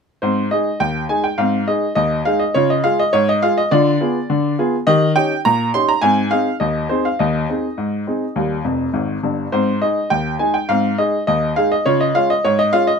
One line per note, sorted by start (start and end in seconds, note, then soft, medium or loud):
0.22 0.47 G#2 medium
0.22 0.40 C4 soft
0.22 0.45 C5 medium
0.51 0.68 G#3 soft
0.51 0.68 D#4 soft
0.51 0.68 G#4 soft
0.51 0.79 D#5 medium
0.80 1.05 D#2 medium
0.80 1.03 G5 medium
1.09 1.26 G#3 soft
1.09 1.26 D#4 soft
1.09 1.26 G#4 soft
1.09 1.24 G#5 medium
1.24 1.38 G5 medium
1.38 1.63 G#2 medium
1.38 1.56 C4 soft
1.38 1.66 F5 medium
1.68 1.84 G#3 soft
1.68 1.84 D#4 soft
1.68 1.84 G#4 soft
1.68 1.91 D#5 medium
1.95 2.21 D#2 medium
1.95 2.19 D#5 medium
2.25 2.42 G#3 soft
2.25 2.42 D#4 soft
2.25 2.43 G#4 soft
2.25 2.40 F5 medium
2.40 2.54 D#5 medium
2.54 2.80 C#3 medium
2.54 2.72 F4 medium
2.54 2.69 C#5 medium
2.70 2.84 D#5 medium
2.84 3.00 G#3 soft
2.84 3.00 F4 soft
2.84 3.01 G#4 soft
2.84 2.98 F5 medium
2.99 3.14 D#5 medium
3.13 3.38 G#2 medium
3.13 3.28 C#5 medium
3.29 3.43 D#5 medium
3.42 3.59 G#3 soft
3.42 3.59 F4 soft
3.42 3.59 G#4 soft
3.42 3.57 F5 medium
3.58 3.72 D#5 medium
3.71 3.96 D3 medium
3.71 3.89 F4 medium
3.71 4.54 D5 medium
4.01 4.16 B3 medium
4.01 4.17 F4 soft
4.01 4.17 G#4 soft
4.30 4.54 D3 medium
4.59 4.75 B3 soft
4.59 4.75 F4 soft
4.59 4.75 G#4 medium
4.87 5.12 D#3 medium
4.87 5.05 G4 medium
4.87 5.10 D#5 loud
5.16 5.32 C#4 medium
5.16 5.32 D#4 medium
5.16 5.33 G4 medium
5.16 5.39 G5 loud
5.45 5.70 A#2 medium
5.45 5.68 A#5 loud
5.74 5.90 C#4 soft
5.74 5.91 D#4 soft
5.74 5.91 G4 soft
5.74 5.89 C6 loud
5.89 6.03 A#5 medium
6.01 6.27 G#2 medium
6.01 6.20 C4 medium
6.01 6.30 G#5 medium
6.31 6.48 C4 soft
6.31 6.48 D#4 soft
6.31 6.48 G#4 medium
6.31 6.54 F5 medium
6.60 6.85 D#2 medium
6.60 6.88 D#5 medium
6.89 7.06 C4 soft
6.89 7.06 D#4 soft
6.89 7.07 G#4 soft
6.89 7.04 C5 medium
7.05 7.19 F5 medium
7.19 7.44 D#2 medium
7.19 8.90 D#5 medium
7.49 7.65 C4 soft
7.49 7.65 D#4 soft
7.49 7.66 G#4 soft
7.78 8.02 G#2 medium
8.07 8.23 C4 soft
8.07 8.24 D#4 soft
8.07 8.24 G#4 soft
8.36 8.61 D#2 medium
8.36 8.53 G3 soft
8.64 8.87 F1 medium
8.64 8.87 F2 medium
8.93 9.16 G#1 medium
8.93 9.16 G#2 medium
9.23 9.45 G1 medium
9.23 9.45 G2 medium
9.52 9.77 G#2 medium
9.52 9.70 C4 soft
9.52 9.80 C5 medium
9.82 9.98 G#3 soft
9.82 9.98 D#4 soft
9.82 9.99 G#4 soft
9.82 10.09 D#5 medium
10.10 10.36 D#2 medium
10.10 10.34 G5 medium
10.39 10.56 G#3 soft
10.39 10.56 D#4 soft
10.39 10.56 G#4 soft
10.39 10.54 G#5 medium
10.54 10.69 G5 medium
10.69 10.94 G#2 medium
10.69 10.87 C4 soft
10.69 10.97 F5 medium
10.98 11.15 G#3 soft
10.98 11.15 D#4 soft
10.98 11.15 G#4 soft
10.98 11.22 D#5 medium
11.27 11.52 D#2 medium
11.27 11.50 D#5 medium
11.56 11.73 G#3 soft
11.56 11.73 D#4 soft
11.56 11.73 G#4 medium
11.56 11.71 F5 medium
11.72 11.86 D#5 medium
11.86 12.10 C#3 medium
11.86 12.03 F4 soft
11.86 12.00 C#5 medium
12.01 12.15 D#5 medium
12.15 12.31 G#3 soft
12.15 12.31 C#4 soft
12.15 12.31 F4 soft
12.15 12.29 F5 medium
12.30 12.44 D#5 medium
12.45 12.69 G#2 medium
12.45 12.58 C#5 medium
12.59 12.73 D#5 medium
12.73 12.89 G#3 soft
12.73 12.89 C#4 soft
12.73 12.89 F4 medium
12.73 12.87 F5 medium
12.87 12.99 D#5 medium